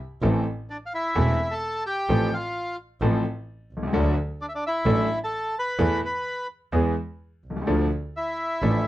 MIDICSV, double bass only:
0, 0, Header, 1, 2, 480
1, 0, Start_track
1, 0, Key_signature, 0, "minor"
1, 0, Tempo, 466563
1, 222, Time_signature, 4, 2, 24, 8
1, 9131, End_track
2, 0, Start_track
2, 0, Title_t, "Double bass"
2, 0, Program_c, 0, 43
2, 227, Note_on_c, 0, 33, 93
2, 431, Note_off_c, 0, 33, 0
2, 1201, Note_on_c, 0, 28, 97
2, 1399, Note_off_c, 0, 28, 0
2, 2152, Note_on_c, 0, 33, 93
2, 2354, Note_off_c, 0, 33, 0
2, 3100, Note_on_c, 0, 33, 100
2, 3304, Note_off_c, 0, 33, 0
2, 3817, Note_on_c, 0, 36, 62
2, 4052, Note_off_c, 0, 36, 0
2, 4058, Note_on_c, 0, 38, 112
2, 4255, Note_off_c, 0, 38, 0
2, 4994, Note_on_c, 0, 33, 96
2, 5196, Note_off_c, 0, 33, 0
2, 5954, Note_on_c, 0, 40, 103
2, 6154, Note_off_c, 0, 40, 0
2, 6923, Note_on_c, 0, 40, 88
2, 7120, Note_off_c, 0, 40, 0
2, 7654, Note_on_c, 0, 36, 52
2, 7886, Note_off_c, 0, 36, 0
2, 7892, Note_on_c, 0, 38, 92
2, 8092, Note_off_c, 0, 38, 0
2, 8868, Note_on_c, 0, 33, 94
2, 9063, Note_off_c, 0, 33, 0
2, 9131, End_track
0, 0, End_of_file